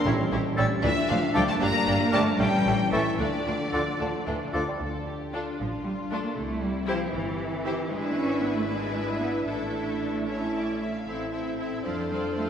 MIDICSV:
0, 0, Header, 1, 12, 480
1, 0, Start_track
1, 0, Key_signature, -1, "minor"
1, 0, Tempo, 518135
1, 50, Time_signature, 6, 3, 24, 8
1, 1969, Tempo, 532860
1, 5329, Tempo, 513699
1, 8209, Tempo, 525855
1, 11458, End_track
2, 0, Start_track
2, 0, Title_t, "Flute"
2, 0, Program_c, 0, 73
2, 533, Note_on_c, 0, 88, 73
2, 644, Note_off_c, 0, 88, 0
2, 1248, Note_on_c, 0, 86, 78
2, 1360, Note_off_c, 0, 86, 0
2, 1970, Note_on_c, 0, 86, 70
2, 2079, Note_off_c, 0, 86, 0
2, 2693, Note_on_c, 0, 85, 65
2, 2802, Note_off_c, 0, 85, 0
2, 3421, Note_on_c, 0, 86, 55
2, 3531, Note_off_c, 0, 86, 0
2, 4139, Note_on_c, 0, 86, 59
2, 4254, Note_off_c, 0, 86, 0
2, 11458, End_track
3, 0, Start_track
3, 0, Title_t, "Violin section"
3, 0, Program_c, 1, 48
3, 774, Note_on_c, 1, 76, 106
3, 994, Note_off_c, 1, 76, 0
3, 1006, Note_on_c, 1, 77, 90
3, 1246, Note_off_c, 1, 77, 0
3, 1252, Note_on_c, 1, 79, 102
3, 1299, Note_off_c, 1, 79, 0
3, 1375, Note_on_c, 1, 81, 99
3, 1422, Note_off_c, 1, 81, 0
3, 1483, Note_on_c, 1, 82, 109
3, 1957, Note_off_c, 1, 82, 0
3, 1969, Note_on_c, 1, 81, 102
3, 2041, Note_off_c, 1, 81, 0
3, 2201, Note_on_c, 1, 79, 92
3, 2674, Note_off_c, 1, 79, 0
3, 2684, Note_on_c, 1, 76, 80
3, 2923, Note_off_c, 1, 76, 0
3, 2932, Note_on_c, 1, 74, 81
3, 4121, Note_off_c, 1, 74, 0
3, 4374, Note_on_c, 1, 69, 51
3, 4599, Note_off_c, 1, 69, 0
3, 4617, Note_on_c, 1, 67, 44
3, 4854, Note_on_c, 1, 65, 54
3, 4855, Note_off_c, 1, 67, 0
3, 5805, Note_on_c, 1, 64, 55
3, 5810, Note_off_c, 1, 65, 0
3, 6520, Note_off_c, 1, 64, 0
3, 6523, Note_on_c, 1, 67, 55
3, 6762, Note_on_c, 1, 69, 55
3, 6763, Note_off_c, 1, 67, 0
3, 7005, Note_off_c, 1, 69, 0
3, 7011, Note_on_c, 1, 67, 55
3, 7241, Note_on_c, 1, 71, 75
3, 7250, Note_off_c, 1, 67, 0
3, 8658, Note_off_c, 1, 71, 0
3, 8692, Note_on_c, 1, 69, 49
3, 9358, Note_off_c, 1, 69, 0
3, 9420, Note_on_c, 1, 73, 46
3, 9644, Note_off_c, 1, 73, 0
3, 9661, Note_on_c, 1, 74, 48
3, 9898, Note_off_c, 1, 74, 0
3, 9904, Note_on_c, 1, 76, 50
3, 10022, Note_off_c, 1, 76, 0
3, 10028, Note_on_c, 1, 77, 46
3, 10146, Note_off_c, 1, 77, 0
3, 10857, Note_on_c, 1, 72, 53
3, 11458, Note_off_c, 1, 72, 0
3, 11458, End_track
4, 0, Start_track
4, 0, Title_t, "Oboe"
4, 0, Program_c, 2, 68
4, 525, Note_on_c, 2, 69, 77
4, 611, Note_off_c, 2, 69, 0
4, 1244, Note_on_c, 2, 69, 75
4, 1329, Note_off_c, 2, 69, 0
4, 1958, Note_on_c, 2, 70, 77
4, 2045, Note_off_c, 2, 70, 0
4, 2690, Note_on_c, 2, 69, 64
4, 2773, Note_off_c, 2, 69, 0
4, 3411, Note_on_c, 2, 69, 63
4, 3497, Note_off_c, 2, 69, 0
4, 4137, Note_on_c, 2, 69, 56
4, 4224, Note_off_c, 2, 69, 0
4, 11458, End_track
5, 0, Start_track
5, 0, Title_t, "Violin section"
5, 0, Program_c, 3, 48
5, 51, Note_on_c, 3, 67, 62
5, 52, Note_on_c, 3, 73, 61
5, 125, Note_off_c, 3, 67, 0
5, 126, Note_off_c, 3, 73, 0
5, 292, Note_on_c, 3, 73, 58
5, 293, Note_on_c, 3, 67, 65
5, 366, Note_off_c, 3, 73, 0
5, 367, Note_off_c, 3, 67, 0
5, 531, Note_on_c, 3, 67, 61
5, 533, Note_on_c, 3, 73, 63
5, 605, Note_off_c, 3, 67, 0
5, 607, Note_off_c, 3, 73, 0
5, 762, Note_on_c, 3, 74, 66
5, 764, Note_on_c, 3, 65, 71
5, 836, Note_off_c, 3, 74, 0
5, 838, Note_off_c, 3, 65, 0
5, 1007, Note_on_c, 3, 65, 65
5, 1007, Note_on_c, 3, 74, 67
5, 1081, Note_off_c, 3, 74, 0
5, 1082, Note_off_c, 3, 65, 0
5, 1248, Note_on_c, 3, 74, 59
5, 1250, Note_on_c, 3, 65, 62
5, 1322, Note_off_c, 3, 74, 0
5, 1324, Note_off_c, 3, 65, 0
5, 1493, Note_on_c, 3, 74, 70
5, 1497, Note_on_c, 3, 67, 73
5, 1567, Note_off_c, 3, 74, 0
5, 1571, Note_off_c, 3, 67, 0
5, 1731, Note_on_c, 3, 74, 62
5, 1732, Note_on_c, 3, 67, 65
5, 1806, Note_off_c, 3, 67, 0
5, 1806, Note_off_c, 3, 74, 0
5, 1976, Note_on_c, 3, 74, 60
5, 1977, Note_on_c, 3, 67, 64
5, 2048, Note_off_c, 3, 74, 0
5, 2049, Note_off_c, 3, 67, 0
5, 2210, Note_on_c, 3, 69, 62
5, 2212, Note_on_c, 3, 64, 66
5, 2282, Note_off_c, 3, 69, 0
5, 2284, Note_off_c, 3, 64, 0
5, 2454, Note_on_c, 3, 64, 58
5, 2454, Note_on_c, 3, 69, 59
5, 2526, Note_off_c, 3, 64, 0
5, 2526, Note_off_c, 3, 69, 0
5, 2694, Note_on_c, 3, 64, 50
5, 2695, Note_on_c, 3, 69, 49
5, 2766, Note_off_c, 3, 64, 0
5, 2767, Note_off_c, 3, 69, 0
5, 2934, Note_on_c, 3, 69, 54
5, 2935, Note_on_c, 3, 65, 55
5, 3006, Note_off_c, 3, 69, 0
5, 3008, Note_off_c, 3, 65, 0
5, 3179, Note_on_c, 3, 65, 49
5, 3180, Note_on_c, 3, 69, 50
5, 3251, Note_off_c, 3, 65, 0
5, 3252, Note_off_c, 3, 69, 0
5, 3416, Note_on_c, 3, 65, 49
5, 3418, Note_on_c, 3, 69, 46
5, 3488, Note_off_c, 3, 65, 0
5, 3490, Note_off_c, 3, 69, 0
5, 3657, Note_on_c, 3, 69, 51
5, 3659, Note_on_c, 3, 65, 51
5, 3729, Note_off_c, 3, 69, 0
5, 3731, Note_off_c, 3, 65, 0
5, 3902, Note_on_c, 3, 69, 50
5, 3903, Note_on_c, 3, 65, 51
5, 3974, Note_off_c, 3, 69, 0
5, 3975, Note_off_c, 3, 65, 0
5, 4144, Note_on_c, 3, 65, 43
5, 4144, Note_on_c, 3, 69, 44
5, 4216, Note_off_c, 3, 65, 0
5, 4216, Note_off_c, 3, 69, 0
5, 4858, Note_on_c, 3, 65, 44
5, 4858, Note_on_c, 3, 69, 42
5, 4967, Note_off_c, 3, 65, 0
5, 4968, Note_off_c, 3, 69, 0
5, 5578, Note_on_c, 3, 65, 44
5, 5581, Note_on_c, 3, 69, 45
5, 5687, Note_off_c, 3, 65, 0
5, 5689, Note_off_c, 3, 69, 0
5, 6290, Note_on_c, 3, 67, 54
5, 6290, Note_on_c, 3, 72, 54
5, 6399, Note_off_c, 3, 67, 0
5, 6399, Note_off_c, 3, 72, 0
5, 7011, Note_on_c, 3, 72, 48
5, 7013, Note_on_c, 3, 67, 49
5, 7121, Note_off_c, 3, 72, 0
5, 7122, Note_off_c, 3, 67, 0
5, 7247, Note_on_c, 3, 71, 54
5, 7247, Note_on_c, 3, 76, 51
5, 7930, Note_off_c, 3, 71, 0
5, 7930, Note_off_c, 3, 76, 0
5, 7964, Note_on_c, 3, 76, 50
5, 7967, Note_on_c, 3, 71, 50
5, 8673, Note_off_c, 3, 76, 0
5, 8675, Note_off_c, 3, 71, 0
5, 8688, Note_on_c, 3, 76, 42
5, 8689, Note_on_c, 3, 69, 44
5, 9403, Note_off_c, 3, 76, 0
5, 9408, Note_off_c, 3, 69, 0
5, 9419, Note_on_c, 3, 69, 43
5, 9423, Note_on_c, 3, 76, 43
5, 9948, Note_off_c, 3, 69, 0
5, 9950, Note_off_c, 3, 76, 0
5, 10142, Note_on_c, 3, 69, 43
5, 10144, Note_on_c, 3, 76, 44
5, 10370, Note_off_c, 3, 76, 0
5, 10373, Note_off_c, 3, 69, 0
5, 10381, Note_on_c, 3, 76, 41
5, 10384, Note_on_c, 3, 69, 41
5, 10606, Note_off_c, 3, 76, 0
5, 10608, Note_off_c, 3, 69, 0
5, 10617, Note_on_c, 3, 76, 41
5, 10619, Note_on_c, 3, 69, 42
5, 10850, Note_off_c, 3, 69, 0
5, 10852, Note_off_c, 3, 76, 0
5, 10861, Note_on_c, 3, 69, 41
5, 10861, Note_on_c, 3, 74, 40
5, 11086, Note_off_c, 3, 69, 0
5, 11088, Note_off_c, 3, 74, 0
5, 11097, Note_on_c, 3, 69, 39
5, 11099, Note_on_c, 3, 74, 41
5, 11317, Note_off_c, 3, 74, 0
5, 11318, Note_off_c, 3, 69, 0
5, 11328, Note_on_c, 3, 74, 38
5, 11329, Note_on_c, 3, 69, 38
5, 11458, Note_off_c, 3, 69, 0
5, 11458, Note_off_c, 3, 74, 0
5, 11458, End_track
6, 0, Start_track
6, 0, Title_t, "Clarinet"
6, 0, Program_c, 4, 71
6, 523, Note_on_c, 4, 61, 69
6, 610, Note_off_c, 4, 61, 0
6, 1239, Note_on_c, 4, 62, 78
6, 1326, Note_off_c, 4, 62, 0
6, 1964, Note_on_c, 4, 62, 71
6, 2049, Note_off_c, 4, 62, 0
6, 2683, Note_on_c, 4, 64, 63
6, 2768, Note_off_c, 4, 64, 0
6, 3410, Note_on_c, 4, 65, 53
6, 3497, Note_off_c, 4, 65, 0
6, 4136, Note_on_c, 4, 65, 55
6, 4223, Note_off_c, 4, 65, 0
6, 11458, End_track
7, 0, Start_track
7, 0, Title_t, "French horn section"
7, 0, Program_c, 5, 60
7, 63, Note_on_c, 5, 61, 69
7, 64, Note_on_c, 5, 55, 66
7, 765, Note_off_c, 5, 55, 0
7, 768, Note_on_c, 5, 62, 76
7, 769, Note_on_c, 5, 53, 79
7, 778, Note_off_c, 5, 61, 0
7, 1475, Note_off_c, 5, 62, 0
7, 1487, Note_off_c, 5, 53, 0
7, 1487, Note_on_c, 5, 62, 74
7, 1494, Note_on_c, 5, 55, 71
7, 1845, Note_off_c, 5, 55, 0
7, 1850, Note_on_c, 5, 53, 70
7, 2192, Note_off_c, 5, 62, 0
7, 2204, Note_on_c, 5, 52, 71
7, 2205, Note_on_c, 5, 61, 73
7, 2207, Note_off_c, 5, 53, 0
7, 2922, Note_on_c, 5, 53, 56
7, 2924, Note_on_c, 5, 62, 57
7, 2928, Note_off_c, 5, 52, 0
7, 2928, Note_off_c, 5, 61, 0
7, 4117, Note_off_c, 5, 62, 0
7, 4140, Note_off_c, 5, 53, 0
7, 4386, Note_on_c, 5, 62, 37
7, 4389, Note_off_c, 5, 62, 0
7, 4389, Note_on_c, 5, 62, 39
7, 5778, Note_off_c, 5, 62, 0
7, 5811, Note_on_c, 5, 60, 45
7, 5815, Note_on_c, 5, 64, 49
7, 7218, Note_off_c, 5, 60, 0
7, 7220, Note_off_c, 5, 64, 0
7, 7244, Note_on_c, 5, 62, 49
7, 7246, Note_on_c, 5, 64, 45
7, 7929, Note_off_c, 5, 62, 0
7, 7930, Note_off_c, 5, 64, 0
7, 7974, Note_on_c, 5, 62, 51
7, 7976, Note_on_c, 5, 64, 50
7, 8678, Note_off_c, 5, 62, 0
7, 8679, Note_off_c, 5, 64, 0
7, 8695, Note_on_c, 5, 64, 38
7, 8696, Note_on_c, 5, 62, 43
7, 9407, Note_off_c, 5, 62, 0
7, 9407, Note_off_c, 5, 64, 0
7, 9424, Note_on_c, 5, 61, 43
7, 9426, Note_on_c, 5, 64, 44
7, 9896, Note_off_c, 5, 64, 0
7, 9905, Note_off_c, 5, 61, 0
7, 10146, Note_on_c, 5, 64, 41
7, 10148, Note_on_c, 5, 60, 39
7, 10824, Note_off_c, 5, 64, 0
7, 10825, Note_off_c, 5, 60, 0
7, 10852, Note_on_c, 5, 62, 46
7, 10855, Note_on_c, 5, 69, 47
7, 11458, Note_off_c, 5, 62, 0
7, 11458, Note_off_c, 5, 69, 0
7, 11458, End_track
8, 0, Start_track
8, 0, Title_t, "Viola section"
8, 0, Program_c, 6, 48
8, 48, Note_on_c, 6, 64, 70
8, 50, Note_on_c, 6, 57, 65
8, 122, Note_off_c, 6, 64, 0
8, 124, Note_off_c, 6, 57, 0
8, 293, Note_on_c, 6, 57, 56
8, 294, Note_on_c, 6, 64, 60
8, 367, Note_off_c, 6, 57, 0
8, 368, Note_off_c, 6, 64, 0
8, 535, Note_on_c, 6, 57, 67
8, 536, Note_on_c, 6, 64, 66
8, 609, Note_off_c, 6, 57, 0
8, 611, Note_off_c, 6, 64, 0
8, 774, Note_on_c, 6, 57, 66
8, 776, Note_on_c, 6, 62, 70
8, 848, Note_off_c, 6, 57, 0
8, 850, Note_off_c, 6, 62, 0
8, 1011, Note_on_c, 6, 62, 68
8, 1013, Note_on_c, 6, 57, 67
8, 1086, Note_off_c, 6, 62, 0
8, 1087, Note_off_c, 6, 57, 0
8, 1245, Note_on_c, 6, 62, 69
8, 1246, Note_on_c, 6, 57, 70
8, 1319, Note_off_c, 6, 62, 0
8, 1320, Note_off_c, 6, 57, 0
8, 1487, Note_on_c, 6, 58, 71
8, 1489, Note_on_c, 6, 62, 71
8, 1561, Note_off_c, 6, 58, 0
8, 1563, Note_off_c, 6, 62, 0
8, 1727, Note_on_c, 6, 62, 62
8, 1731, Note_on_c, 6, 58, 60
8, 1802, Note_off_c, 6, 62, 0
8, 1805, Note_off_c, 6, 58, 0
8, 1970, Note_on_c, 6, 58, 60
8, 1972, Note_on_c, 6, 62, 64
8, 2042, Note_off_c, 6, 58, 0
8, 2044, Note_off_c, 6, 62, 0
8, 2203, Note_on_c, 6, 57, 57
8, 2206, Note_on_c, 6, 61, 57
8, 2275, Note_off_c, 6, 57, 0
8, 2278, Note_off_c, 6, 61, 0
8, 2446, Note_on_c, 6, 57, 54
8, 2448, Note_on_c, 6, 61, 58
8, 2518, Note_off_c, 6, 57, 0
8, 2520, Note_off_c, 6, 61, 0
8, 2683, Note_on_c, 6, 61, 57
8, 2684, Note_on_c, 6, 57, 53
8, 2755, Note_off_c, 6, 61, 0
8, 2756, Note_off_c, 6, 57, 0
8, 2922, Note_on_c, 6, 62, 54
8, 2923, Note_on_c, 6, 57, 58
8, 2994, Note_off_c, 6, 62, 0
8, 2995, Note_off_c, 6, 57, 0
8, 3170, Note_on_c, 6, 57, 46
8, 3172, Note_on_c, 6, 62, 43
8, 3242, Note_off_c, 6, 57, 0
8, 3244, Note_off_c, 6, 62, 0
8, 3417, Note_on_c, 6, 62, 49
8, 3418, Note_on_c, 6, 57, 51
8, 3489, Note_off_c, 6, 62, 0
8, 3491, Note_off_c, 6, 57, 0
8, 3655, Note_on_c, 6, 62, 46
8, 3656, Note_on_c, 6, 57, 46
8, 3727, Note_off_c, 6, 62, 0
8, 3728, Note_off_c, 6, 57, 0
8, 3900, Note_on_c, 6, 62, 49
8, 3902, Note_on_c, 6, 57, 46
8, 3972, Note_off_c, 6, 62, 0
8, 3974, Note_off_c, 6, 57, 0
8, 4146, Note_on_c, 6, 57, 49
8, 4146, Note_on_c, 6, 62, 48
8, 4218, Note_off_c, 6, 57, 0
8, 4218, Note_off_c, 6, 62, 0
8, 4858, Note_on_c, 6, 62, 43
8, 4859, Note_off_c, 6, 62, 0
8, 4859, Note_on_c, 6, 62, 42
8, 4968, Note_off_c, 6, 62, 0
8, 5576, Note_on_c, 6, 62, 47
8, 5577, Note_off_c, 6, 62, 0
8, 5577, Note_on_c, 6, 62, 47
8, 5687, Note_off_c, 6, 62, 0
8, 6283, Note_on_c, 6, 64, 53
8, 6286, Note_on_c, 6, 67, 53
8, 6395, Note_off_c, 6, 64, 0
8, 6397, Note_off_c, 6, 67, 0
8, 7004, Note_on_c, 6, 64, 50
8, 7004, Note_on_c, 6, 67, 53
8, 7117, Note_off_c, 6, 64, 0
8, 7117, Note_off_c, 6, 67, 0
8, 7245, Note_on_c, 6, 62, 50
8, 7245, Note_on_c, 6, 64, 47
8, 7929, Note_off_c, 6, 62, 0
8, 7929, Note_off_c, 6, 64, 0
8, 7962, Note_on_c, 6, 62, 44
8, 7967, Note_on_c, 6, 64, 46
8, 8673, Note_off_c, 6, 62, 0
8, 8675, Note_off_c, 6, 64, 0
8, 8690, Note_on_c, 6, 62, 40
8, 8691, Note_on_c, 6, 64, 39
8, 9404, Note_off_c, 6, 62, 0
8, 9405, Note_off_c, 6, 64, 0
8, 9416, Note_on_c, 6, 64, 39
8, 9420, Note_on_c, 6, 61, 40
8, 9946, Note_off_c, 6, 64, 0
8, 9959, Note_off_c, 6, 61, 0
8, 10142, Note_on_c, 6, 64, 42
8, 10144, Note_on_c, 6, 60, 44
8, 10369, Note_off_c, 6, 60, 0
8, 10371, Note_off_c, 6, 64, 0
8, 10380, Note_on_c, 6, 60, 34
8, 10382, Note_on_c, 6, 64, 37
8, 10607, Note_off_c, 6, 60, 0
8, 10610, Note_off_c, 6, 64, 0
8, 10618, Note_on_c, 6, 60, 37
8, 10621, Note_on_c, 6, 64, 40
8, 10847, Note_off_c, 6, 60, 0
8, 10854, Note_off_c, 6, 64, 0
8, 10858, Note_on_c, 6, 60, 38
8, 10860, Note_on_c, 6, 65, 38
8, 11080, Note_off_c, 6, 60, 0
8, 11081, Note_off_c, 6, 65, 0
8, 11091, Note_on_c, 6, 60, 37
8, 11092, Note_on_c, 6, 65, 39
8, 11315, Note_off_c, 6, 65, 0
8, 11316, Note_off_c, 6, 60, 0
8, 11326, Note_on_c, 6, 65, 40
8, 11327, Note_on_c, 6, 60, 41
8, 11458, Note_off_c, 6, 60, 0
8, 11458, Note_off_c, 6, 65, 0
8, 11458, End_track
9, 0, Start_track
9, 0, Title_t, "Cello section"
9, 0, Program_c, 7, 48
9, 761, Note_on_c, 7, 52, 90
9, 836, Note_off_c, 7, 52, 0
9, 1005, Note_on_c, 7, 53, 70
9, 1079, Note_off_c, 7, 53, 0
9, 1246, Note_on_c, 7, 55, 85
9, 1294, Note_off_c, 7, 55, 0
9, 1366, Note_on_c, 7, 57, 86
9, 1485, Note_off_c, 7, 57, 0
9, 1486, Note_on_c, 7, 58, 95
9, 1959, Note_off_c, 7, 58, 0
9, 1964, Note_on_c, 7, 57, 85
9, 2200, Note_on_c, 7, 55, 83
9, 2204, Note_off_c, 7, 57, 0
9, 2674, Note_off_c, 7, 55, 0
9, 2686, Note_on_c, 7, 52, 66
9, 2758, Note_off_c, 7, 52, 0
9, 2929, Note_on_c, 7, 50, 60
9, 4119, Note_off_c, 7, 50, 0
9, 5094, Note_on_c, 7, 53, 58
9, 5166, Note_off_c, 7, 53, 0
9, 5322, Note_on_c, 7, 55, 58
9, 5397, Note_off_c, 7, 55, 0
9, 5566, Note_on_c, 7, 57, 63
9, 5616, Note_off_c, 7, 57, 0
9, 5689, Note_on_c, 7, 58, 63
9, 5800, Note_on_c, 7, 57, 67
9, 5808, Note_off_c, 7, 58, 0
9, 6038, Note_off_c, 7, 57, 0
9, 6041, Note_on_c, 7, 55, 65
9, 6282, Note_off_c, 7, 55, 0
9, 6282, Note_on_c, 7, 53, 67
9, 6517, Note_off_c, 7, 53, 0
9, 6517, Note_on_c, 7, 52, 69
9, 7229, Note_off_c, 7, 52, 0
9, 7243, Note_on_c, 7, 56, 66
9, 7486, Note_off_c, 7, 56, 0
9, 7488, Note_on_c, 7, 61, 73
9, 7724, Note_on_c, 7, 59, 62
9, 7727, Note_off_c, 7, 61, 0
9, 7846, Note_off_c, 7, 59, 0
9, 7851, Note_on_c, 7, 57, 56
9, 7898, Note_off_c, 7, 57, 0
9, 7968, Note_on_c, 7, 56, 64
9, 8438, Note_off_c, 7, 56, 0
9, 8449, Note_on_c, 7, 59, 63
9, 8522, Note_off_c, 7, 59, 0
9, 8694, Note_on_c, 7, 57, 59
9, 9880, Note_off_c, 7, 57, 0
9, 10858, Note_on_c, 7, 53, 55
9, 10931, Note_off_c, 7, 53, 0
9, 11093, Note_on_c, 7, 55, 54
9, 11166, Note_off_c, 7, 55, 0
9, 11329, Note_on_c, 7, 57, 63
9, 11446, Note_off_c, 7, 57, 0
9, 11458, End_track
10, 0, Start_track
10, 0, Title_t, "Bassoon"
10, 0, Program_c, 8, 70
10, 534, Note_on_c, 8, 55, 79
10, 617, Note_off_c, 8, 55, 0
10, 1249, Note_on_c, 8, 53, 75
10, 1332, Note_off_c, 8, 53, 0
10, 1972, Note_on_c, 8, 55, 78
10, 2053, Note_off_c, 8, 55, 0
10, 2689, Note_on_c, 8, 52, 62
10, 2772, Note_off_c, 8, 52, 0
10, 3418, Note_on_c, 8, 50, 59
10, 3502, Note_off_c, 8, 50, 0
10, 3660, Note_on_c, 8, 50, 61
10, 3884, Note_off_c, 8, 50, 0
10, 3902, Note_on_c, 8, 52, 59
10, 4011, Note_off_c, 8, 52, 0
10, 4145, Note_on_c, 8, 53, 63
10, 4199, Note_off_c, 8, 53, 0
10, 4272, Note_on_c, 8, 55, 57
10, 4385, Note_off_c, 8, 55, 0
10, 11458, End_track
11, 0, Start_track
11, 0, Title_t, "Timpani"
11, 0, Program_c, 10, 47
11, 49, Note_on_c, 10, 45, 82
11, 734, Note_off_c, 10, 45, 0
11, 11458, End_track
12, 0, Start_track
12, 0, Title_t, "Double bass section"
12, 0, Program_c, 11, 48
12, 56, Note_on_c, 11, 33, 70
12, 130, Note_off_c, 11, 33, 0
12, 302, Note_on_c, 11, 33, 77
12, 376, Note_off_c, 11, 33, 0
12, 539, Note_on_c, 11, 33, 69
12, 613, Note_off_c, 11, 33, 0
12, 778, Note_on_c, 11, 38, 80
12, 852, Note_off_c, 11, 38, 0
12, 1019, Note_on_c, 11, 38, 78
12, 1093, Note_off_c, 11, 38, 0
12, 1257, Note_on_c, 11, 38, 74
12, 1331, Note_off_c, 11, 38, 0
12, 1499, Note_on_c, 11, 31, 75
12, 1574, Note_off_c, 11, 31, 0
12, 1735, Note_on_c, 11, 31, 74
12, 1809, Note_off_c, 11, 31, 0
12, 1976, Note_on_c, 11, 31, 67
12, 2048, Note_off_c, 11, 31, 0
12, 2210, Note_on_c, 11, 33, 75
12, 2282, Note_off_c, 11, 33, 0
12, 2452, Note_on_c, 11, 33, 61
12, 2524, Note_off_c, 11, 33, 0
12, 2692, Note_on_c, 11, 33, 62
12, 2764, Note_off_c, 11, 33, 0
12, 2930, Note_on_c, 11, 38, 59
12, 3002, Note_off_c, 11, 38, 0
12, 3179, Note_on_c, 11, 38, 56
12, 3251, Note_off_c, 11, 38, 0
12, 3422, Note_on_c, 11, 38, 54
12, 3494, Note_off_c, 11, 38, 0
12, 3660, Note_on_c, 11, 38, 52
12, 3732, Note_off_c, 11, 38, 0
12, 3904, Note_on_c, 11, 38, 54
12, 3976, Note_off_c, 11, 38, 0
12, 4149, Note_on_c, 11, 38, 53
12, 4222, Note_off_c, 11, 38, 0
12, 4389, Note_on_c, 11, 38, 45
12, 4954, Note_off_c, 11, 38, 0
12, 5098, Note_on_c, 11, 33, 50
12, 5670, Note_off_c, 11, 33, 0
12, 5812, Note_on_c, 11, 36, 54
12, 6380, Note_off_c, 11, 36, 0
12, 6524, Note_on_c, 11, 31, 62
12, 7101, Note_off_c, 11, 31, 0
12, 7244, Note_on_c, 11, 32, 52
12, 8651, Note_off_c, 11, 32, 0
12, 8693, Note_on_c, 11, 33, 46
12, 9934, Note_off_c, 11, 33, 0
12, 10145, Note_on_c, 11, 33, 44
12, 10776, Note_off_c, 11, 33, 0
12, 10862, Note_on_c, 11, 41, 44
12, 11458, Note_off_c, 11, 41, 0
12, 11458, End_track
0, 0, End_of_file